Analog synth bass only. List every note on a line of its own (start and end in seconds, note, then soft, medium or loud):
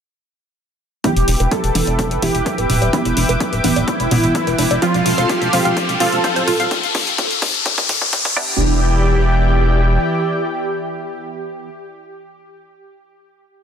1.16 1.24 E1 medium
1.28 1.35 E1 loud
1.40 1.47 E1 medium
1.64 1.71 E1 medium
1.75 1.83 E1 loud
1.87 2.12 E1 medium
2.11 2.18 F1 medium
2.22 2.30 E1 loud
2.35 2.42 E1 medium
2.58 2.65 D1 medium
2.70 2.77 D1 loud
2.82 2.89 D1 medium
3.05 3.12 E1 medium
3.17 3.24 E1 loud
3.29 3.36 E1 medium
3.53 3.60 D1 medium
3.64 3.72 D1 medium
3.76 3.83 D1 medium
4.00 4.07 E1 medium
4.11 4.19 E1 loud
4.23 4.31 E1 medium
4.47 4.54 E1 medium
4.58 4.66 E1 loud
4.71 4.78 E1 loud
4.94 5.01 E1 medium
5.06 5.13 E1 loud
5.18 5.25 E1 loud
5.42 5.49 E1 medium
5.53 5.61 E1 loud
5.65 5.72 E1 loud
5.89 5.96 E1 medium
6.00 6.08 E1 loud
6.12 6.20 E1 medium
6.36 6.43 D1 medium
6.47 6.55 D1 loud
6.60 6.67 D1 medium
8.37 9.98 E1 loud